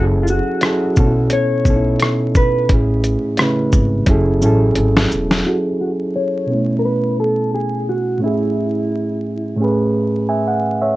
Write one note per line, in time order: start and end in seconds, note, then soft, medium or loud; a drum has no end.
0.00 0.39 F#1 loud
0.00 0.48 F#3 medium
0.00 0.48 C#4 medium
0.00 0.49 E4 medium
0.00 0.49 G#4 medium
0.00 0.50 A4 medium
0.23 0.29 F4 medium
0.27 1.36 F#4 medium
0.27 shaker soft
0.61 0.97 F#3 medium
0.61 0.97 C#4 medium
0.61 0.98 E4 medium
0.61 0.98 G#4 medium
0.61 cross-stick loud
0.61 closed hi-hat medium
0.66 0.99 A4 medium
0.96 1.26 B1 medium
0.96 1.53 B2 medium
0.96 1.54 B3 medium
0.96 1.54 C#4 medium
0.96 1.05 D4 medium
0.96 1.55 A4 medium
0.96 kick medium
0.96 shaker soft
1.06 1.58 E4 medium
1.30 2.36 C#5 loud
1.30 closed hi-hat medium
1.65 1.95 B1 medium
1.65 2.46 B2 medium
1.65 2.46 B3 medium
1.65 2.47 C#4 medium
1.65 1.75 D#4 soft
1.65 kick medium
1.65 shaker soft
1.70 2.48 A4 medium
1.75 2.51 E4 medium
2.00 cross-stick loud
2.00 closed hi-hat medium
2.35 2.71 B4 medium
2.35 kick medium
2.35 shaker soft
2.69 3.15 A1 loud
2.69 3.24 A2 medium
2.69 3.24 A3 medium
2.69 3.25 C#4 medium
2.69 3.25 E4 medium
2.69 kick loud
2.69 closed hi-hat medium
2.73 3.26 G#4 medium
3.04 closed hi-hat soft
3.04 shaker soft
3.37 4.07 C#3 medium
3.37 4.08 A3 medium
3.37 4.07 C#4 medium
3.37 cross-stick loud
3.37 closed hi-hat medium
3.41 4.08 E4 medium
3.41 4.09 B4 medium
3.72 4.02 G#1 medium
3.72 kick medium
3.72 shaker soft
4.06 4.43 F#1 loud
4.06 4.36 F#3 medium
4.06 4.36 C#4 medium
4.06 4.37 E4 medium
4.06 4.37 G#4 medium
4.06 kick medium
4.06 closed hi-hat medium
4.11 4.38 A4 medium
4.41 4.71 A1 medium
4.41 5.22 F#3 medium
4.41 5.22 C#4 medium
4.41 5.23 E4 medium
4.41 5.23 G#4 medium
4.41 shaker soft
4.46 5.24 A4 medium
4.75 5.06 G#1 medium
4.75 closed hi-hat medium
4.97 snare medium
5.12 5.41 E1 medium
5.12 shaker soft
5.31 snare medium
5.45 6.49 F#3 medium
5.45 6.49 C#4 soft
5.45 6.49 E4 soft
5.45 5.56 F#4 medium
5.45 6.50 G#4 medium
5.45 6.50 A4 medium
5.81 5.90 F#4 medium
6.16 6.79 C#5 medium
6.46 8.17 B2 medium
6.46 8.18 B3 soft
6.50 8.19 A3 medium
6.50 8.19 C#4 medium
6.50 8.20 E4 medium
6.79 6.84 A#4 medium
6.85 7.19 B4 medium
7.20 7.54 A4 medium
7.54 7.89 G#4 medium
7.89 8.23 F#4 medium
8.18 9.55 A2 medium
8.18 9.56 A3 medium
8.18 9.57 C#4 medium
8.24 9.56 E4 medium
8.24 9.58 E4 medium
8.24 9.59 G#4 medium
9.56 10.93 A2 medium
9.56 10.94 A3 medium
9.60 10.95 C#4 medium
9.60 10.96 G#4 medium
9.60 10.96 B4 medium
10.29 10.47 E5 medium
10.29 10.47 G#5 medium
10.48 10.80 F#5 medium
10.82 10.96 C#5 medium
10.82 10.96 E5 medium